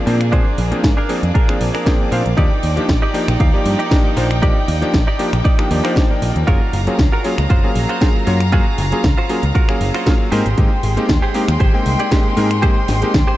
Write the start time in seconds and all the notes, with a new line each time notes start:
Already playing: A#3 G#4 D5
0.06 A#2 F3 A#3 C4 D4 C5, muted clean electric guitar stroke, open hi-hat
0.21 finger snap, closed hi-hat
0.31 F3 A#3 C4 D4 G#4 C5, kick, closed hi-hat
0.58 A#1, open hi-hat
0.71 F3 A#3 C4 D4 G#4, muted picked electric bass stroke, closed hi-hat
0.84 G#2, kick, snare, closed hi-hat
0.97 D4 G#4 A#4
1.09 F3 A#3 C4 D4 G#4, open hi-hat
1.23 F2, closed hi-hat
1.34 D4 G#4 A#4, kick, closed hi-hat
1.48 F3 A#3 C4 D4 G#4, finger snap
1.61 A#1, open hi-hat
1.74 D4 G#4 A#4, finger snap, open hi-hat
1.85 F3 A#3 C4 D4 G#4 G5, kick, snare, closed hi-hat
2.11 A#2 F3 A#3 C4 D4 C5 F5, muted clean electric guitar stroke, open hi-hat
2.26 A#1, closed hi-hat
2.37 D#2 F3 A#3 D4 D#4 G4 D5 G5, kick, closed hi-hat
2.63 D#2, open hi-hat
2.76 F3 A#3 D4 D#4 G4, muted picked electric bass stroke, closed hi-hat
2.89 A#1, kick, snare, closed hi-hat
3.02 D#4 G4 D5
3.14 F3 A#3 D4 D#4 G4, open hi-hat
3.28 A#1, finger snap, closed hi-hat
3.40 D#2 D#4 G4 F5, kick, closed hi-hat
3.53 F3 A#3 D#4 G4 D5
3.66 G2, open hi-hat
3.79 D#4 G4 D5, closed hi-hat
3.90 F3 A#3 D4 D#4 G4, kick, snare, closed hi-hat
4.16 A#1 F3 A#3 D4 D#4 C5, muted clean electric guitar stroke, open hi-hat
4.31 finger snap, closed hi-hat
4.42 F3 A#3 D4 D#4 G4 D5, kick, closed hi-hat
4.68 D#2, open hi-hat
4.81 F3 A#3 D4 D#4 G4, muted picked electric bass stroke, closed hi-hat
4.94 A#1, kick, snare, closed hi-hat
5.07 D#4 G4 D5
5.19 F3 A#3 D4 D#4 G4, open hi-hat
5.33 A#1, finger snap, closed hi-hat
5.44 D#4 G4 D5, kick, closed hi-hat
5.59 F3 A#3 D4 D#4 G4, finger snap
5.70 D#2 F3 A#3 D4 D#4 G4, open hi-hat
5.84 F3 A#3 D4 D#4 G4 C5 D5, finger snap, open hi-hat
5.96 kick, snare, closed hi-hat
6.10 F3 A#3 D#4 A#4 D5
6.22 A#1, muted clean electric guitar stroke, open hi-hat
6.36 D#2, closed hi-hat
6.47 F#1 F#3 A#3 C#4 F4 F#4 G#4 A#4 F5 A#5, kick, closed hi-hat
6.73 F#1, open hi-hat
6.87 F#3 A#3 C#4 F4 G#4, muted picked electric bass stroke, closed hi-hat
6.99 C#2, kick, snare, closed hi-hat
7.12 F4 F#4 A#4
7.24 F#3 A#3 C#4 F4 G#4, open hi-hat
7.38 C#2, finger snap, closed hi-hat
7.50 F#1 F4 F#4 C5, kick, closed hi-hat
7.64 F#3 A#3 C#4 G#4 F5
7.76 A#1, open hi-hat
7.89 F4 F#4 C5, closed hi-hat
8.01 F#3 A#3 C#4 F4 G#4, kick, snare, closed hi-hat
8.26 F#2 F#3 A#3 C#4 F4 C#5, muted clean electric guitar stroke, open hi-hat
8.40 finger snap, closed hi-hat
8.52 F#3 A#3 C#4 F4 F#4 G#4, kick, closed hi-hat
8.78 F#1, open hi-hat
8.92 F#3 A#3 C#4 F4 G#4, muted picked electric bass stroke, closed hi-hat
9.04 C#2, kick, snare, closed hi-hat
9.18 F4 F#4 C5
9.29 F#3 A#3 C#4 F4 G#4, open hi-hat
9.43 C#2, closed hi-hat
9.55 F4 F#4 A#4, kick, closed hi-hat
9.69 F#3 A#3 C#4 G#4 F5, finger snap
9.81 F#1, open hi-hat
9.94 F4 F#4 C5, finger snap, open hi-hat
10.06 F#3 A#3 C#4 F4 G#4, kick, snare, closed hi-hat
10.31 G#2 G#3 A#3 C4 D#4 G4 G#4 A#4 C5 G5 C6, open hi-hat
10.46 G#1, closed hi-hat
10.57 G#1 G#3 A#3 C4 D#4 G4, kick, closed hi-hat
10.83 G#1, open hi-hat
10.97 G#3 A#3 C4 D#4 G4, muted picked electric bass stroke, closed hi-hat
11.09 D#2, kick, snare, closed hi-hat
11.22 G4 G#4 C5
11.34 G#3 A#3 C4 D#4 G4, open hi-hat
11.48 D#2, finger snap, closed hi-hat
11.60 G#1 G4 G#4 C5, kick, closed hi-hat
11.73 G#3 A#3 C4 D#4 G5
11.86 C2, open hi-hat
11.99 G4 G#4 D5, closed hi-hat
12.11 G#3 A#3 C4 D#4 G4, kick, snare, closed hi-hat
12.36 G#2 G#3 A#3 C4 D#4 A#4, muted clean electric guitar stroke, open hi-hat
12.51 finger snap, closed hi-hat
12.62 G#3 A#3 C4 D#4 G4 G#4 C5, kick, closed hi-hat
12.88 G#1, snare, open hi-hat
13.02 G#3 A#3 C4 D#4 G4, muted picked electric bass stroke, closed hi-hat
13.14 D#2, kick, snare, closed hi-hat
13.27 G4 G#4 C5